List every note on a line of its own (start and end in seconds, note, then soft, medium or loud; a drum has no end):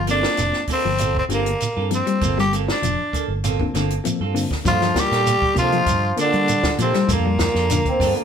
0.00 0.24 G1 medium
0.00 0.11 F3 medium
0.07 0.26 A#3 medium
0.07 0.62 A#3 medium
0.07 0.26 C4 medium
0.07 0.62 C4 medium
0.07 0.66 D4 medium
0.07 0.26 F4 medium
0.07 0.62 F4 medium
0.07 0.26 A4 medium
0.07 0.62 A4 medium
0.07 closed hi-hat soft
0.07 shekere soft
0.23 snare medium
0.37 0.51 F1 medium
0.37 snare soft
0.37 closed hi-hat medium
0.37 shekere medium
0.53 snare soft
0.67 0.88 A#3 medium
0.67 0.88 C4 medium
0.67 0.88 F4 medium
0.67 0.88 A4 medium
0.67 muted fingered electric bass stroke soft
0.67 kick medium
0.67 open hi-hat medium
0.67 shekere soft
0.73 1.14 C4 medium
0.85 1.20 G1 medium
0.85 1.04 F3 medium
0.98 1.18 C4 medium
0.98 1.19 F4 medium
0.98 1.19 A4 medium
0.98 muted clean electric guitar stroke medium
0.98 closed hi-hat medium
0.98 shekere medium
1.15 1.24 C4 medium
1.15 kick medium
1.29 1.53 G1 medium
1.29 1.48 D3 medium
1.29 1.50 A#3 medium
1.29 1.49 A#3 medium
1.29 1.50 C4 medium
1.29 1.49 C4 medium
1.29 1.50 F4 medium
1.29 1.49 F4 medium
1.29 1.50 G4 medium
1.29 1.49 A4 medium
1.29 closed hi-hat soft
1.29 shekere soft
1.34 1.89 A#3 medium
1.46 closed hi-hat soft
1.60 closed hi-hat medium
1.60 shekere medium
1.76 2.01 G2 medium
1.76 1.95 C4 soft
1.76 1.83 F4 medium
1.76 1.94 F4 soft
1.76 1.94 A4 soft
1.76 1.83 A#4 medium
1.90 2.01 F3 medium
1.90 2.45 A#3 medium
1.90 2.45 C4 medium
1.90 2.45 F4 medium
1.90 2.45 A4 medium
1.90 closed hi-hat soft
1.90 shekere soft
1.95 2.36 C4 medium
2.07 2.25 G3 medium
2.07 closed hi-hat soft
2.21 2.70 G1 medium
2.21 2.40 A#3 medium
2.21 2.40 C4 medium
2.21 2.40 F4 medium
2.21 2.41 A4 medium
2.21 kick medium
2.21 closed hi-hat medium
2.21 shekere medium
2.38 2.56 G3 medium
2.38 2.53 G4 medium
2.38 snare soft
2.52 2.71 A#3 medium
2.52 2.71 C4 medium
2.52 2.71 F4 medium
2.52 2.72 A4 medium
2.52 closed hi-hat soft
2.52 shekere soft
2.68 3.27 D4 medium
2.68 snare medium
2.82 2.95 F1 medium
2.82 3.01 F3 medium
2.82 closed hi-hat medium
2.82 shekere medium
3.13 3.32 A#3 medium
3.13 3.33 A4 medium
3.13 muted fingered electric bass stroke soft
3.13 kick medium
3.13 closed hi-hat soft
3.13 shekere soft
3.28 3.64 G1 medium
3.44 3.63 A#3 medium
3.44 3.63 C4 medium
3.44 3.63 F4 medium
3.44 3.63 A4 medium
3.44 closed hi-hat medium
3.44 shekere medium
3.59 3.69 D3 medium
3.59 3.80 A#3 medium
3.59 3.79 C4 medium
3.59 3.80 F4 medium
3.59 3.80 A4 medium
3.59 kick medium
3.74 3.98 G1 medium
3.74 3.94 D3 medium
3.74 3.93 A#3 medium
3.74 3.93 C4 medium
3.74 3.94 F4 medium
3.74 3.94 A4 medium
3.74 snare soft
3.74 closed hi-hat soft
3.74 shekere soft
3.90 closed hi-hat soft
4.04 4.24 F3 medium
4.04 4.19 A#3 medium
4.04 4.18 C4 medium
4.04 4.18 F4 medium
4.04 4.19 A4 medium
4.04 closed hi-hat medium
4.04 shekere medium
4.20 4.44 G2 medium
4.20 4.39 C4 soft
4.20 4.39 F4 soft
4.20 4.39 A4 medium
4.34 4.54 D3 medium
4.34 4.49 A#3 medium
4.34 4.49 C4 medium
4.34 4.49 F4 medium
4.34 4.49 A4 medium
4.34 open hi-hat medium
4.34 shekere soft
4.51 kick medium
4.51 snare soft
4.64 4.90 G2 medium
4.64 4.76 F3 medium
4.64 5.01 F3 medium
4.64 4.79 A#3 medium
4.64 4.79 D4 medium
4.64 4.85 D4 medium
4.64 4.79 F4 medium
4.64 4.85 F4 medium
4.64 4.80 A4 medium
4.64 4.86 A4 medium
4.64 muted clean electric guitar stroke medium
4.64 kick medium
4.64 closed hi-hat medium
4.64 shekere medium
4.68 5.01 F4 loud
4.82 5.01 F3 medium
4.82 snare soft
4.82 closed hi-hat soft
4.94 5.22 A#3 medium
4.94 5.22 D4 medium
4.94 5.23 F4 medium
4.94 5.22 A#4 medium
4.94 kick medium
4.94 snare medium
4.94 closed hi-hat soft
4.94 shekere soft
4.99 5.59 G3 medium
4.99 5.58 G4 loud
5.11 5.36 A#2 medium
5.11 5.30 D4 soft
5.11 5.30 F4 soft
5.11 5.30 A4 medium
5.11 snare soft
5.11 closed hi-hat soft
5.27 closed hi-hat medium
5.27 shekere medium
5.42 muted fingered electric bass stroke soft
5.42 kick medium
5.54 5.80 C3 medium
5.54 5.83 A#3 medium
5.54 5.76 A#3 medium
5.54 5.83 D4 medium
5.54 5.76 D4 medium
5.54 5.83 F4 medium
5.54 5.77 F4 medium
5.54 5.83 A4 medium
5.54 kick medium
5.54 closed hi-hat soft
5.54 shekere soft
5.58 6.16 F3 loud
5.58 6.15 F4 loud
5.58 5.77 A4 medium
5.72 5.92 F3 medium
5.72 closed hi-hat soft
5.86 6.11 G2 medium
5.86 kick medium
5.86 closed hi-hat medium
5.86 shekere medium
6.16 6.37 D3 medium
6.16 6.51 A#3 medium
6.16 6.37 A#3 medium
6.16 6.51 D4 medium
6.16 6.37 D4 medium
6.16 6.51 F4 medium
6.16 6.37 F4 medium
6.16 6.37 A4 medium
6.16 6.51 A#4 medium
6.16 closed hi-hat medium
6.16 shekere soft
6.21 6.76 D3 medium
6.21 6.76 D4 loud
6.33 6.69 G3 medium
6.33 closed hi-hat soft
6.48 closed hi-hat medium
6.48 shekere medium
6.63 kick medium
6.63 snare medium
6.63 closed hi-hat soft
6.78 6.91 A#2 medium
6.78 7.09 C3 medium
6.78 6.89 F3 medium
6.78 6.98 A#3 medium
6.78 7.09 C4 medium
6.78 6.98 D4 medium
6.78 6.98 F4 medium
6.78 6.98 A4 medium
6.78 closed hi-hat medium
6.78 shekere soft
6.92 7.14 G3 medium
6.92 7.00 F4 medium
6.92 7.00 A4 medium
6.92 muted fingered electric bass stroke soft
6.92 snare soft
6.92 closed hi-hat soft
7.07 7.46 F2 medium
7.07 7.29 A#3 medium
7.07 7.28 A#3 medium
7.07 7.29 D4 medium
7.07 7.29 F4 medium
7.07 7.29 A4 medium
7.07 kick medium
7.07 closed hi-hat medium
7.07 shekere medium
7.13 8.24 A#2 medium
7.13 8.24 A#3 medium
7.26 7.44 G3 medium
7.39 kick medium
7.39 snare medium
7.39 closed hi-hat medium
7.39 shekere soft
7.54 7.79 F2 medium
7.54 7.95 A#3 medium
7.54 7.95 D4 medium
7.54 7.74 D4 soft
7.54 7.95 F4 medium
7.54 7.74 F4 soft
7.54 7.95 A4 medium
7.54 7.73 A4 medium
7.54 snare soft
7.69 7.90 D3 medium
7.69 7.76 A#3 medium
7.69 closed hi-hat medium
7.69 shekere medium
7.86 8.15 C4 loud
7.86 kick medium
7.86 closed hi-hat soft
7.99 8.13 G2 medium
7.99 8.19 D4 medium
7.99 8.20 F4 medium
7.99 8.20 A4 medium
7.99 muted clean electric guitar stroke medium
7.99 kick medium
7.99 open hi-hat medium
7.99 shekere soft
8.16 8.24 A#3 medium
8.16 closed hi-hat soft